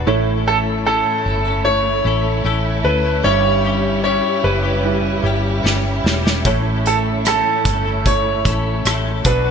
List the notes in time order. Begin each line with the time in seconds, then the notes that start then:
0.06 A1 A2 E3 A3 C#4 E4 A4 C#5
0.45 A3 C#4 E4 A4
0.85 A2 E3 A3 C#4 E4 A4
1.25 G1 A3 C#4 E4 A4
1.45 A3 C#4 E4 A4
1.64 A3 E4 C#5
2.04 A1 A3 C#4 E4 A4
2.44 A1 A2 E3 A3 C#4 E4 A4
2.83 D2 A3 C#4 E4 A4 B4
3.03 A3 C#4 E4 A4
3.23 G1 G2 G3 C#4 E4 G4 C#5
3.63 G3 C#4 E4 G4
4.03 G3 C#4 E4 G4 C#5
4.43 F#1 G3 C#4 E4 G4 B4
4.63 C#4 E4 G4
4.83 G3 E4 B4
5.23 G1 G3 C#4 E4 G4
5.63 G1 G3 C#4 E4 G4, snare
6.04 E1 G3 C#4 E4 G4, snare
6.24 C#4 E4 G4, snare
6.44 A1 A2 E3 A3 C#4 E4 A4 C#5, kick, closed hi-hat
6.84 A3 C#4 E4 A4, closed hi-hat
7.24 A2 E3 A3 C#4 E4 A4, cross-stick, closed hi-hat
7.64 G1 A3 C#4 E4 A4, kick, closed hi-hat
7.85 A3 C#4 E4 A4
8.06 A3 E4 C#5, kick, closed hi-hat
8.45 A1 A3 C#4 E4 A4, kick, closed hi-hat
8.85 A1 A2 E3 A3 C#4 E4 A4, cross-stick, closed hi-hat
9.24 B1 B2 F#3 B3 D4 F#4 B4, kick, closed hi-hat
9.44 D4 F#4 B4